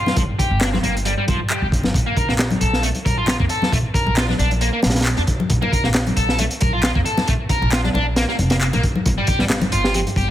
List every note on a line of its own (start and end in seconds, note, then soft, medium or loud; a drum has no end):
0.00 0.16 F4 medium
0.06 snare soft
0.06 high conga medium
0.16 0.25 G1 medium
0.16 0.21 F3 loud
0.16 kick loud
0.16 closed hi-hat medium
0.39 0.60 G4 medium
0.39 kick medium
0.39 closed hi-hat medium
0.51 0.79 G1 medium
0.61 0.69 D4 medium
0.61 snare loud
0.61 clap loud
0.61 closed hi-hat medium
0.73 0.77 C4 medium
0.73 snare soft
0.73 high conga medium
0.83 1.12 G1 medium
0.83 0.94 A#3 medium
0.83 closed hi-hat medium
0.97 closed hi-hat soft
1.05 1.13 G3 medium
1.05 closed hi-hat medium
1.18 1.24 G3 medium
1.28 1.37 G1 medium
1.28 1.39 F3 medium
1.28 kick loud
1.28 closed hi-hat medium
1.28 high conga medium
1.50 1.61 G3 medium
1.50 clap loud
1.62 1.90 G1 medium
1.62 1.66 G4 medium
1.72 kick medium
1.72 closed hi-hat medium
1.83 snare medium
1.83 high conga medium
1.94 2.03 A#1 medium
1.94 kick loud
1.94 closed hi-hat medium
2.06 2.16 A#3 medium
2.17 2.28 A#4 medium
2.17 kick medium
2.17 closed hi-hat medium
2.17 muted conga soft
2.29 2.56 A#1 medium
2.29 2.32 A#3 medium
2.29 snare soft
2.39 snare loud
2.39 clap loud
2.39 closed hi-hat medium
2.50 closed hi-hat soft
2.50 muted conga medium
2.50 high conga medium
2.61 2.90 A#1 medium
2.61 2.82 A4 medium
2.61 closed hi-hat medium
2.73 snare soft
2.83 2.88 A3 medium
2.83 closed hi-hat medium
2.95 closed hi-hat soft
2.95 muted conga soft
3.05 3.34 A#1 medium
3.05 3.16 A#4 medium
3.05 kick medium
3.05 closed hi-hat medium
3.05 high conga medium
3.17 3.27 F4 medium
3.27 3.35 F4 medium
3.27 snare loud
3.27 clap loud
3.27 closed hi-hat medium
3.27 muted conga medium
3.40 3.47 F2 medium
3.40 3.44 A#3 medium
3.40 kick medium
3.49 3.71 A4 medium
3.49 closed hi-hat medium
3.62 snare soft
3.62 high conga medium
3.72 3.81 A#1 medium
3.72 3.77 A3 medium
3.72 kick loud
3.72 closed hi-hat medium
3.72 muted conga soft
3.94 4.16 A#4 medium
3.94 kick medium
3.94 closed hi-hat medium
4.06 4.34 A#1 medium
4.06 muted conga medium
4.16 4.24 F4 medium
4.16 snare loud
4.16 clap medium
4.16 closed hi-hat medium
4.28 4.32 D4 medium
4.28 snare soft
4.28 high conga medium
4.39 4.68 A#1 medium
4.39 4.50 D4 medium
4.39 closed hi-hat medium
4.51 closed hi-hat soft
4.51 muted conga soft
4.61 4.69 A#3 medium
4.61 closed hi-hat medium
4.73 4.79 A#3 medium
4.83 5.12 A#1 medium
4.83 snare medium
4.83 closed hi-hat medium
4.83 muted conga medium
4.83 high conga medium
4.90 snare medium
4.90 closed hi-hat medium
4.95 snare medium
4.95 closed hi-hat medium
5.00 snare medium
5.00 closed hi-hat medium
5.06 clap medium
5.06 closed hi-hat medium
5.17 5.25 F2 medium
5.17 5.21 D4 medium
5.17 closed hi-hat soft
5.27 kick medium
5.27 closed hi-hat medium
5.27 muted conga medium
5.40 high conga medium
5.50 5.58 A#1 medium
5.50 kick loud
5.50 closed hi-hat medium
5.62 5.72 A#3 medium
5.62 muted conga medium
5.72 5.83 A#4 medium
5.72 kick medium
5.72 closed hi-hat medium
5.84 6.12 A#1 medium
5.84 5.88 A#3 medium
5.84 snare soft
5.94 snare loud
5.94 clap loud
5.94 closed hi-hat medium
6.07 closed hi-hat soft
6.07 muted conga medium
6.07 high conga medium
6.17 6.45 A#1 medium
6.17 6.38 A4 medium
6.17 closed hi-hat medium
6.29 snare soft
6.39 6.44 A3 medium
6.39 closed hi-hat medium
6.39 muted conga medium
6.51 closed hi-hat soft
6.61 6.90 A#1 medium
6.61 6.72 A#4 medium
6.61 kick loud
6.61 closed hi-hat medium
6.61 high conga medium
6.73 6.82 F4 medium
6.83 6.91 F4 medium
6.83 snare loud
6.83 clap medium
6.83 closed hi-hat medium
6.83 muted conga medium
6.95 7.03 F2 medium
6.95 6.99 A#3 medium
6.95 kick medium
7.06 7.27 A4 medium
7.06 closed hi-hat medium
7.17 snare soft
7.17 muted conga medium
7.17 high conga medium
7.27 7.37 A#1 medium
7.27 7.32 A3 loud
7.27 kick loud
7.27 closed hi-hat medium
7.49 7.71 A#4 medium
7.49 kick medium
7.49 closed hi-hat medium
7.62 7.90 A#1 medium
7.62 muted conga medium
7.72 7.80 F4 medium
7.72 snare loud
7.72 clap medium
7.72 closed hi-hat medium
7.84 7.88 D4 medium
7.84 snare soft
7.84 high conga medium
7.94 8.23 A#1 medium
7.94 8.05 D4 medium
7.94 muted conga medium
8.16 8.24 A#3 medium
8.16 snare medium
8.16 closed hi-hat medium
8.28 8.35 A#3 medium
8.28 snare soft
8.39 8.67 F1 medium
8.39 closed hi-hat medium
8.39 muted conga medium
8.39 high conga medium
8.50 8.55 A#3 medium
8.50 snare loud
8.50 closed hi-hat medium
8.61 8.66 A#3 medium
8.61 clap medium
8.61 closed hi-hat medium
8.73 8.80 A#1 medium
8.73 8.83 A#3 medium
8.73 closed hi-hat soft
8.73 muted conga medium
8.83 kick medium
8.83 closed hi-hat medium
8.95 high conga medium
9.06 9.14 G1 medium
9.06 kick loud
9.06 closed hi-hat medium
9.18 9.27 G3 medium
9.27 9.39 G4 medium
9.27 kick medium
9.27 closed hi-hat medium
9.27 muted conga soft
9.39 9.68 G1 medium
9.39 9.44 G3 medium
9.39 snare soft
9.50 snare loud
9.50 clap loud
9.50 closed hi-hat medium
9.61 closed hi-hat soft
9.61 muted conga medium
9.61 high conga medium
9.72 10.01 G1 medium
9.72 9.94 F4 medium
9.72 closed hi-hat medium
9.84 9.91 G4 medium
9.84 snare soft
9.94 9.99 F3 loud
9.94 10.02 G4 medium
9.94 closed hi-hat medium
10.07 closed hi-hat soft
10.07 muted conga soft
10.16 10.30 G1 medium
10.16 10.28 G4 medium
10.16 kick medium
10.16 closed hi-hat medium
10.16 high conga medium